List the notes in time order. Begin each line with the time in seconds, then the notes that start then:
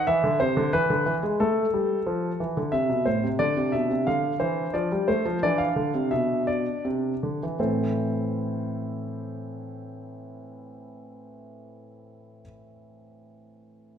0.07 E3 E5
0.24 D3
0.40 C3 C5
0.57 D3
0.73 E3 B4
0.90 D3
1.06 E3
1.23 G#3
1.40 A3 A4
1.74 G3
2.06 F3
2.40 E3
2.57 D3
2.72 C3 E5
2.89 B2
3.06 A2 C5
3.23 C3
3.39 D3 D4 D5
3.57 C3
3.72 B2 E5
3.90 C3
4.07 D3 F5
4.40 E3 C5
4.74 F3 D5
4.92 G3
5.08 A3 C5
5.26 F3
5.43 E3 D4 D5
5.58 F5
5.76 D3
5.95 C3
6.11 B2 E5
6.47 D5
6.85 C3
7.23 D3
7.43 E3
7.59 A2 E3 C4 E4 A4 C5